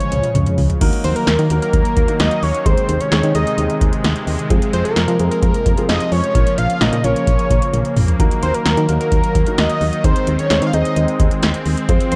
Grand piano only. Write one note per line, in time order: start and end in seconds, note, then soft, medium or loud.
0.81 1.23 A#3 medium
0.81 1.23 D#4 medium
0.81 1.23 F#4 medium
0.81 1.23 A#4 loud
1.50 1.85 A#3 medium
1.50 1.85 D#4 medium
1.50 1.85 F#4 medium
1.50 1.85 A#4 medium
2.08 2.43 A#3 medium
2.08 2.43 D#4 medium
2.08 2.43 F#4 medium
2.08 2.43 A#4 medium
2.66 2.94 G#3 medium
2.66 2.94 C4 medium
2.66 2.94 D#4 medium
2.66 2.94 G#4 medium
3.12 3.26 G#3 medium
3.12 3.26 C4 medium
3.12 3.26 D#4 medium
3.12 3.26 G#4 medium
3.35 3.91 G#3 medium
3.35 3.91 C4 medium
3.35 3.91 D#4 medium
3.35 3.91 G#4 medium
4.50 4.92 G#3 medium
4.50 4.92 C4 medium
4.50 4.92 F4 medium
4.50 4.92 G#4 loud
5.20 5.55 G#3 medium
5.20 5.55 C4 medium
5.20 5.55 F4 medium
5.20 5.55 G#4 medium
5.77 6.12 G#3 medium
5.77 6.12 C4 medium
5.77 6.12 F4 medium
5.77 6.12 G#4 medium
6.35 6.63 A#3 medium
6.35 6.63 C#4 medium
6.35 6.63 F4 medium
6.35 6.63 A#4 medium
6.81 6.95 A#3 medium
6.81 6.95 C#4 medium
6.81 6.95 F4 medium
6.81 6.95 A#4 medium
7.04 7.60 A#3 medium
7.04 7.60 C#4 medium
7.04 7.60 F4 medium
7.04 7.60 A#4 medium
8.20 8.62 A#3 medium
8.20 8.62 D#4 medium
8.20 8.62 F#4 medium
8.20 8.62 A#4 loud
8.89 9.24 A#3 medium
8.89 9.24 D#4 medium
8.89 9.24 F#4 medium
8.89 9.24 A#4 medium
9.47 9.82 A#3 medium
9.47 9.82 D#4 medium
9.47 9.82 F#4 medium
9.47 9.82 A#4 medium
10.04 10.32 C4 medium
10.04 10.32 D#4 medium
10.04 10.32 G#4 medium
10.04 10.32 C5 medium
10.50 10.64 C4 medium
10.50 10.64 D#4 medium
10.50 10.64 G#4 medium
10.50 10.64 C5 medium
10.73 11.29 C4 medium
10.73 11.29 D#4 medium
10.73 11.29 G#4 medium
10.73 11.29 C5 medium
11.89 12.16 C4 medium
11.89 12.16 F4 medium
11.89 12.16 G#4 medium
11.89 12.16 C5 loud